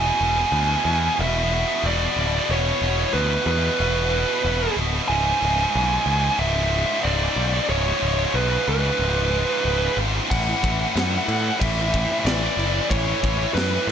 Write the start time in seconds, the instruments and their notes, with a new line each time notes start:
Already playing: picked electric bass E1, lead electric guitar G#5
0.07 distorted electric guitar E2 B2
0.15 distorted electric guitar E2 B2
0.21 picked electric bass E1, distorted electric guitar E2 B2
0.30 distorted electric guitar E2 B2
0.38 distorted electric guitar E2 B2
0.45 distorted electric guitar E2 B2
0.52 picked electric bass D2, distorted electric guitar E2 B2
0.60 distorted electric guitar E2 B2
0.68 distorted electric guitar E2 B2
0.75 distorted electric guitar E2 B2
0.83 distorted electric guitar E2 B2, picked electric bass E2
0.90 distorted electric guitar E2 B2
0.98 distorted electric guitar E2 B2
1.06 distorted electric guitar E2 B2
1.14 distorted electric guitar E2 B2
1.19 picked electric bass E1, distorted electric guitar E2 B2, lead electric guitar E5
1.27 distorted electric guitar E2 B2
1.36 distorted electric guitar E2 B2
1.44 distorted electric guitar E2 B2
1.52 distorted electric guitar E2 B2
1.59 distorted electric guitar E2 B2
1.67 distorted electric guitar E2 B2
1.74 distorted electric guitar E2 B2
1.81 picked electric bass E1, distorted electric guitar E2 B2
1.86 distorted electric guitar E2 B2, lead electric guitar D5
1.97 distorted electric guitar E2 B2
2.04 distorted electric guitar E2 B2
2.11 distorted electric guitar E2 B2
2.16 picked electric bass D1, distorted electric guitar E2 B2
2.27 distorted electric guitar E2 B2
2.34 distorted electric guitar E2 B2
2.42 distorted electric guitar E2 B2
2.50 picked electric bass E1, distorted electric guitar E2 B2, lead electric guitar C#5
2.59 distorted electric guitar E2 B2
2.66 distorted electric guitar E2 B2
2.73 distorted electric guitar E2 B2
2.81 picked electric bass E1, distorted electric guitar E2 B2
2.89 distorted electric guitar E2 B2
2.97 distorted electric guitar E2 B2
3.04 distorted electric guitar E2 B2
3.13 picked electric bass D2, distorted electric guitar E2 B2, lead electric guitar B4
3.20 distorted electric guitar E2 B2
3.27 distorted electric guitar E2 B2
3.34 distorted electric guitar E2 B2
3.42 distorted electric guitar E2 B2
3.46 picked electric bass E2, distorted electric guitar E2, lead electric guitar B4
3.51 distorted electric guitar B2
3.57 distorted electric guitar E2 B2
3.65 distorted electric guitar E2 B2
3.73 distorted electric guitar E2 B2
3.80 picked electric bass E1, distorted electric guitar E2 B2
3.88 distorted electric guitar E2 B2
3.95 distorted electric guitar E2 B2
4.04 distorted electric guitar E2 B2
4.12 distorted electric guitar E2 B2
4.19 distorted electric guitar E2 B2
4.27 distorted electric guitar E2 B2
4.33 distorted electric guitar E2 B2
4.41 picked electric bass E1, distorted electric guitar E2 B2
4.49 distorted electric guitar E2 B2
4.57 distorted electric guitar E2 B2
4.65 distorted electric guitar E2 B2
4.72 distorted electric guitar E2 B2
4.77 picked electric bass D1, distorted electric guitar B2
4.81 distorted electric guitar E2
4.87 distorted electric guitar E2 B2
4.95 distorted electric guitar E2 B2
5.03 distorted electric guitar E2 B2
5.08 picked electric bass C#1, distorted electric guitar C#2 G#2, lead electric guitar G#5
5.18 distorted electric guitar C#2 G#2
5.24 distorted electric guitar C#2 G#2
5.32 distorted electric guitar C#2 G#2
5.40 picked electric bass C#1, distorted electric guitar C#2 G#2
5.47 distorted electric guitar C#2 G#2
5.55 distorted electric guitar C#2 G#2
5.62 distorted electric guitar C#2 G#2
5.69 distorted electric guitar C#2 G#2
5.75 picked electric bass B1, distorted electric guitar C#2 G#2
5.85 distorted electric guitar C#2 G#2
5.93 distorted electric guitar C#2 G#2
6.02 distorted electric guitar C#2 G#2
6.06 picked electric bass C#2, distorted electric guitar C#2
6.10 distorted electric guitar G#2
6.16 distorted electric guitar C#2 G#2
6.23 distorted electric guitar C#2 G#2
6.31 distorted electric guitar C#2 G#2
6.38 picked electric bass C#1, distorted electric guitar C#2 G#2, lead electric guitar E5
6.47 distorted electric guitar C#2 G#2
6.55 distorted electric guitar C#2 G#2
6.62 distorted electric guitar C#2 G#2
6.69 distorted electric guitar C#2 G#2
6.77 distorted electric guitar C#2 G#2
6.85 distorted electric guitar C#2 G#2
6.92 distorted electric guitar C#2 G#2
7.00 distorted electric guitar C#2 G#2, lead electric guitar D5
7.05 picked electric bass C#1, distorted electric guitar C#2 G#2
7.15 distorted electric guitar C#2 G#2
7.23 distorted electric guitar C#2 G#2
7.31 distorted electric guitar C#2 G#2
7.36 picked electric bass B1, distorted electric guitar C#2 G#2
7.46 distorted electric guitar C#2 G#2
7.53 distorted electric guitar C#2 G#2
7.60 distorted electric guitar C#2 G#2
7.69 picked electric bass C#1, distorted electric guitar C#2 G#2, lead electric guitar C#5
7.77 distorted electric guitar C#2 G#2
7.85 distorted electric guitar C#2 G#2
7.94 distorted electric guitar C#2 G#2
8.00 picked electric bass C#1, distorted electric guitar C#2 G#2
8.08 distorted electric guitar C#2 G#2
8.16 distorted electric guitar C#2 G#2
8.23 distorted electric guitar C#2 G#2
8.31 picked electric bass B1, distorted electric guitar C#2 G#2
8.36 distorted electric guitar C#2 G#2, lead electric guitar B4
8.46 distorted electric guitar C#2 G#2
8.54 distorted electric guitar C#2 G#2
8.63 distorted electric guitar C#2 G#2
8.68 picked electric bass C#2, distorted electric guitar C#2 G#2, lead electric guitar B4
8.77 distorted electric guitar C#2 G#2
8.84 distorted electric guitar C#2 G#2
8.92 distorted electric guitar C#2 G#2
8.99 picked electric bass C#1, distorted electric guitar C#2 G#2
9.08 distorted electric guitar C#2 G#2
9.16 distorted electric guitar C#2 G#2
9.22 distorted electric guitar C#2 G#2
9.30 distorted electric guitar C#2 G#2
9.39 distorted electric guitar C#2 G#2
9.46 distorted electric guitar C#2 G#2
9.53 distorted electric guitar C#2 G#2
9.61 distorted electric guitar C#2 G#2
9.65 picked electric bass C#1
9.69 distorted electric guitar C#2 G#2
9.76 distorted electric guitar C#2 G#2
9.84 distorted electric guitar C#2 G#2
9.91 distorted electric guitar C#2 G#2
9.97 picked electric bass G#1, distorted electric guitar C#2 G#2
10.07 distorted electric guitar C#2 G#2
10.15 distorted electric guitar C#2 G#2
10.22 distorted electric guitar C#2 G#2
10.30 picked electric bass A1, distorted electric guitar A2 E3, lead electric guitar F#5, kick, crash
10.40 distorted electric guitar A2 E3
10.48 distorted electric guitar A2 E3
10.56 distorted electric guitar A2 E3
10.63 picked electric bass A1, distorted electric guitar A2 E3, kick, crash
10.71 distorted electric guitar A2 E3
10.79 distorted electric guitar A2 E3
10.86 distorted electric guitar A2 E3
10.95 picked electric bass F#2, distorted electric guitar A2 E3, snare, crash
11.03 distorted electric guitar A2 E3
11.10 distorted electric guitar A2 E3
11.18 distorted electric guitar A2 E3
11.26 distorted electric guitar A2 E3, picked electric bass A2, crash
11.33 distorted electric guitar A2 E3
11.42 distorted electric guitar A2 E3
11.49 distorted electric guitar A2 E3
11.57 distorted electric guitar A2 E3, lead electric guitar E5
11.61 picked electric bass A1, distorted electric guitar A2 E3, kick, crash
11.72 distorted electric guitar A2 E3
11.81 distorted electric guitar A2 E3
11.88 distorted electric guitar A2 E3
11.94 distorted electric guitar A2 E3, kick, crash
12.04 distorted electric guitar A2 E3
12.11 distorted electric guitar A2 E3
12.19 distorted electric guitar A2 E3
12.25 picked electric bass A1, distorted electric guitar A2 E3, lead electric guitar D5, snare, crash
12.34 distorted electric guitar A2 E3
12.42 distorted electric guitar A2 E3
12.50 distorted electric guitar A2 E3
12.57 picked electric bass F#1, distorted electric guitar A2 E3, crash
12.65 distorted electric guitar A2 E3
12.73 distorted electric guitar A2 E3
12.82 distorted electric guitar A2 E3
12.90 picked electric bass A1, distorted electric guitar A2 E3, lead electric guitar C#5, kick, crash
12.97 distorted electric guitar A2 E3
13.06 distorted electric guitar A2 E3
13.12 distorted electric guitar A2 E3
13.21 picked electric bass A1, distorted electric guitar A2 E3, kick, crash
13.29 distorted electric guitar A2 E3
13.37 distorted electric guitar A2 E3
13.44 distorted electric guitar A2 E3
13.51 picked electric bass F#2, distorted electric guitar A2 E3, lead electric guitar B4
13.57 distorted electric guitar A2 E3, snare, crash
13.67 distorted electric guitar A2 E3
13.73 distorted electric guitar A2 E3
13.82 distorted electric guitar A2 E3
13.88 picked electric bass A2, lead electric guitar B4